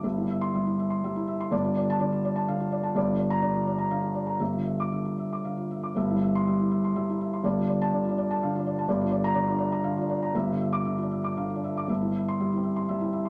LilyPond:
<<
  \new Staff \with { instrumentName = "Felt piano" } { \time 3/4 \key c \mixolydian \tempo 4 = 122 << { r8. c'''8 r4. r16 | r8. a''8 r4. r16 | r8. bes''8 r4. r16 | r8. d'''8 r4. r16 |
r8. c'''8 r4. r16 | r8. a''8 r4. r16 | r8. bes''8 r4. r16 | r8. d'''8 r4. r16 |
r8. c'''8 r4. r16 | } \\ { e''16 e'16 e''8 e''16 e'16 e''16 c'''16 e''16 e'16 e''16 c'''16 | d''16 f'16 d''8 d''16 f'16 d''16 a''16 f''16 f'16 d''16 a''16 | d''16 f'16 d''8 d''16 f'16 d''16 bes''16 f''16 f'16 d''16 bes''16 | e''16 f'16 e''8 e''16 f'16 e''16 d'''16 f''16 f'16 e''16 d'''16 |
e''16 e'16 e''8 e''16 e'16 e''16 c'''16 e''16 e'16 e''16 c'''16 | d''16 f'16 d''8 d''16 f'16 d''16 a''16 f''16 f'16 d''16 a''16 | d''16 f'16 d''8 d''16 f'16 d''16 bes''16 f''16 f'16 d''16 bes''16 | e''16 f'16 e''8 e''16 f'16 e''16 d'''16 f''16 f'16 e''16 d'''16 |
e''16 e'16 e''8 e''16 e'16 e''16 c'''16 e''16 e'16 e''16 c'''16 | } >> }
  \new Staff \with { instrumentName = "Felt piano" } { \clef bass \time 3/4 \key c \mixolydian \tuplet 3/2 { <g,, g,>8 g4 } g8 r8 g8 r8 | \tuplet 3/2 { <g,, g,>8 d4 } d8 r8 d8 r8 | \tuplet 3/2 { <g,, g,>8 d4 } d8 r8 d8 r8 | \tuplet 3/2 { <g,, g,>8 d4 } d8 r8 d8 r8 |
\tuplet 3/2 { <g,, g,>8 g4 } g8 r8 g8 r8 | \tuplet 3/2 { <g,, g,>8 d4 d8 d'4 d8 d'4 } | \tuplet 3/2 { <g,, g,>8 d4 d8 d'4 d8 d'4 } | \tuplet 3/2 { <g,, g,>8 d4 d8 d'4 d8 d'4 } |
\tuplet 3/2 { <g,, g,>8 g4 g8 c'4 g8 c'4 } | }
>>